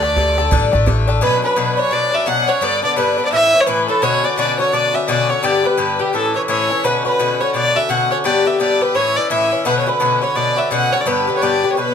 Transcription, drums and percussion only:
0.03 bodhran medium
0.16 bodhran medium
0.38 bodhran medium
0.52 bodhran medium
0.62 bodhran soft
0.73 bodhran medium
0.87 bodhran medium
1.09 bodhran medium

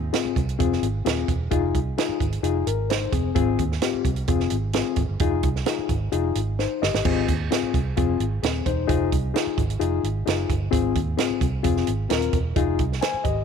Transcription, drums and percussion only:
0.13 snare medium
0.13 closed hi-hat medium
0.36 kick medium
0.36 closed hi-hat medium
0.49 closed hi-hat soft
0.60 kick medium
0.60 closed hi-hat medium
0.72 snare soft
0.83 closed hi-hat medium
1.06 snare loud
1.06 closed hi-hat medium
1.28 kick medium
1.28 closed hi-hat medium
1.51 kick loud
1.51 closed hi-hat medium
1.75 kick medium
1.75 closed hi-hat medium
1.98 snare loud
1.98 closed hi-hat medium
2.20 kick medium
2.20 closed hi-hat medium
2.32 closed hi-hat soft
2.44 closed hi-hat medium
2.67 closed hi-hat medium
2.90 snare loud
2.90 closed hi-hat medium
3.13 kick medium
3.13 closed hi-hat medium
3.36 kick loud
3.36 closed hi-hat medium
3.59 kick medium
3.59 closed hi-hat medium
3.72 snare soft
3.82 snare medium
3.82 closed hi-hat loud
4.05 kick medium
4.05 closed hi-hat medium
4.16 closed hi-hat soft
4.28 kick medium
4.28 closed hi-hat medium
4.40 snare soft
4.50 closed hi-hat medium
4.73 snare loud
4.73 closed hi-hat medium
4.96 kick medium
4.96 closed hi-hat medium
5.20 kick loud
5.20 closed hi-hat medium
5.43 kick medium
5.43 closed hi-hat medium
5.56 snare soft
5.66 snare loud
5.66 closed hi-hat medium
5.89 kick medium
5.89 closed hi-hat medium
6.12 closed hi-hat medium
6.35 closed hi-hat medium
6.59 snare soft
6.83 snare medium
6.95 snare medium
7.05 kick loud
7.05 crash medium
7.28 kick medium
7.28 closed hi-hat medium
7.52 snare medium
7.52 closed hi-hat medium
7.74 kick medium
7.74 closed hi-hat medium
7.97 kick medium
7.97 closed hi-hat medium
8.20 closed hi-hat medium
8.43 snare loud
8.43 closed hi-hat medium
8.66 kick medium
8.66 closed hi-hat medium
8.89 kick loud
8.89 closed hi-hat medium
9.12 kick medium
9.12 closed hi-hat medium
9.36 snare loud
9.36 closed hi-hat medium
9.58 kick medium
9.58 closed hi-hat medium
9.70 closed hi-hat medium
9.81 closed hi-hat medium
10.04 closed hi-hat medium
10.27 snare loud
10.27 closed hi-hat medium
10.50 kick medium
10.50 closed hi-hat medium
10.73 kick loud
10.73 closed hi-hat medium
10.95 kick medium
10.95 closed hi-hat medium
11.18 snare medium
11.18 closed hi-hat medium
11.41 kick medium
11.41 closed hi-hat medium
11.64 kick medium
11.64 closed hi-hat medium
11.77 snare soft
11.87 closed hi-hat medium
12.10 snare medium
12.10 closed hi-hat medium
12.22 closed hi-hat soft
12.33 kick medium
12.33 closed hi-hat medium
12.56 kick loud
12.56 closed hi-hat medium
12.79 kick medium
12.79 closed hi-hat medium
12.92 snare soft
13.02 snare loud
13.02 closed hi-hat medium
13.25 kick medium
13.25 closed hi-hat medium

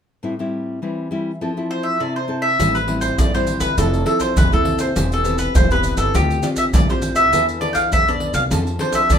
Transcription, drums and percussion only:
2.60 pandeiro medium
2.60 maracas medium
2.60 surdo medium
2.75 pandeiro soft
2.75 maracas soft
2.88 pandeiro medium
3.01 pandeiro medium
3.01 maracas medium
3.01 surdo soft
3.18 pandeiro medium
3.18 maracas medium
3.18 surdo medium
3.34 pandeiro soft
3.34 maracas soft
3.47 pandeiro medium
3.47 maracas medium
3.61 pandeiro medium
3.61 maracas medium
3.61 surdo soft
3.78 pandeiro medium
3.78 maracas medium
3.78 surdo medium
3.94 pandeiro soft
3.94 maracas soft
4.06 pandeiro medium
4.20 pandeiro medium
4.20 maracas medium
4.20 surdo soft
4.37 pandeiro medium
4.37 maracas medium
4.37 surdo loud
4.53 pandeiro soft
4.53 maracas soft
4.65 pandeiro medium
4.79 pandeiro medium
4.79 maracas medium
4.79 surdo soft
4.96 pandeiro medium
4.96 maracas medium
4.96 surdo medium
5.12 pandeiro soft
5.12 maracas soft
5.25 pandeiro medium
5.25 maracas medium
5.38 pandeiro medium
5.38 maracas medium
5.38 surdo soft
5.55 pandeiro medium
5.55 maracas medium
5.55 surdo loud
5.71 pandeiro soft
5.71 maracas soft
5.83 pandeiro soft
5.83 maracas medium
5.97 pandeiro medium
5.97 maracas medium
5.97 surdo soft
6.15 pandeiro medium
6.15 maracas medium
6.15 surdo medium
6.30 pandeiro soft
6.30 maracas soft
6.43 pandeiro medium
6.43 maracas medium
6.56 pandeiro medium
6.56 maracas medium
6.56 surdo soft
6.73 pandeiro medium
6.73 maracas medium
6.73 surdo loud
6.89 pandeiro soft
6.89 maracas soft
7.02 pandeiro medium
7.02 maracas medium
7.16 pandeiro medium
7.16 maracas medium
7.16 surdo soft
7.33 pandeiro medium
7.33 maracas medium
7.33 surdo medium
7.49 pandeiro soft
7.49 maracas soft
7.61 pandeiro medium
7.75 pandeiro medium
7.75 maracas medium
7.75 surdo soft
7.92 pandeiro medium
7.92 maracas medium
7.92 surdo medium
8.08 pandeiro soft
8.08 maracas soft
8.20 pandeiro medium
8.34 pandeiro medium
8.34 maracas medium
8.34 surdo soft
8.51 pandeiro medium
8.51 maracas medium
8.51 surdo medium
8.67 pandeiro soft
8.67 maracas soft
8.79 pandeiro medium
8.93 pandeiro medium
8.93 maracas medium
8.93 surdo soft
9.10 pandeiro medium
9.10 maracas medium
9.10 surdo medium

